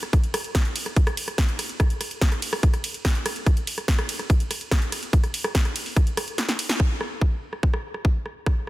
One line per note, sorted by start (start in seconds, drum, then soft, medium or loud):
0.03 cross-stick soft
0.03 closed hi-hat soft
0.13 kick loud
0.13 cross-stick soft
0.13 closed hi-hat medium
0.24 closed hi-hat medium
0.34 cross-stick medium
0.34 open hi-hat loud
0.34 ride medium
0.44 closed hi-hat medium
0.55 kick loud
0.55 cross-stick soft
0.55 snare loud
0.55 closed hi-hat medium
0.65 closed hi-hat medium
0.76 open hi-hat loud
0.76 ride medium
0.86 cross-stick soft
0.86 closed hi-hat medium
0.96 kick loud
0.96 closed hi-hat medium
1.07 cross-stick medium
1.07 closed hi-hat soft
1.17 open hi-hat loud
1.17 ride medium
1.28 cross-stick soft
1.28 closed hi-hat medium
1.38 kick loud
1.38 snare loud
1.38 closed hi-hat medium
1.49 closed hi-hat medium
1.59 cross-stick soft
1.59 open hi-hat loud
1.59 ride medium
1.69 closed hi-hat medium
1.80 kick loud
1.80 cross-stick medium
1.80 closed hi-hat medium
1.90 closed hi-hat medium
2.01 cross-stick soft
2.01 open hi-hat loud
2.01 ride medium
2.11 closed hi-hat medium
2.21 kick loud
2.21 snare loud
2.21 closed hi-hat medium
2.32 cross-stick soft
2.32 closed hi-hat medium
2.42 open hi-hat loud
2.42 ride medium
2.53 cross-stick medium
2.53 open hi-hat medium
2.63 kick loud
2.63 closed hi-hat medium
2.74 cross-stick soft
2.74 closed hi-hat medium
2.84 open hi-hat loud
2.84 ride medium
2.94 closed hi-hat medium
3.05 kick loud
3.05 cross-stick soft
3.05 snare loud
3.05 closed hi-hat medium
3.15 closed hi-hat medium
3.26 cross-stick medium
3.26 open hi-hat loud
3.26 ride medium
3.36 closed hi-hat medium
3.46 kick loud
3.46 cross-stick soft
3.46 closed hi-hat medium
3.57 closed hi-hat medium
3.67 open hi-hat loud
3.67 ride medium
3.78 cross-stick soft
3.78 closed hi-hat medium
3.88 kick loud
3.88 snare loud
3.88 closed hi-hat medium
3.99 cross-stick medium
3.99 closed hi-hat medium
4.09 open hi-hat loud
4.09 ride medium
4.19 cross-stick soft
4.19 closed hi-hat medium
4.30 kick loud
4.30 closed hi-hat medium
4.40 closed hi-hat medium
4.51 cross-stick soft
4.51 open hi-hat loud
4.51 ride medium
4.61 closed hi-hat medium
4.71 kick loud
4.71 cross-stick medium
4.71 snare loud
4.71 closed hi-hat medium
4.82 closed hi-hat medium
4.92 cross-stick soft
4.92 open hi-hat loud
4.92 ride medium
5.03 closed hi-hat medium
5.13 kick loud
5.13 closed hi-hat medium
5.24 cross-stick soft
5.24 closed hi-hat medium
5.34 open hi-hat loud
5.34 ride medium
5.44 cross-stick medium
5.44 closed hi-hat medium
5.55 kick loud
5.55 snare loud
5.55 closed hi-hat medium
5.65 cross-stick soft
5.65 closed hi-hat medium
5.76 open hi-hat loud
5.76 ride medium
5.86 open hi-hat medium
5.96 kick loud
5.96 cross-stick soft
5.96 closed hi-hat medium
6.07 closed hi-hat medium
6.17 cross-stick medium
6.17 open hi-hat loud
6.17 ride medium
6.28 closed hi-hat medium
6.38 snare medium
6.38 closed hi-hat medium
6.49 snare medium
6.49 closed hi-hat medium
6.59 open hi-hat loud
6.59 ride medium
6.69 snare medium
6.69 closed hi-hat medium
6.80 kick loud
6.80 cross-stick soft
7.01 cross-stick medium
7.21 kick loud
7.21 cross-stick soft
7.53 cross-stick soft
7.63 kick loud
7.74 cross-stick medium
7.94 cross-stick soft
8.05 kick loud
8.26 cross-stick soft
8.46 kick loud
8.46 cross-stick medium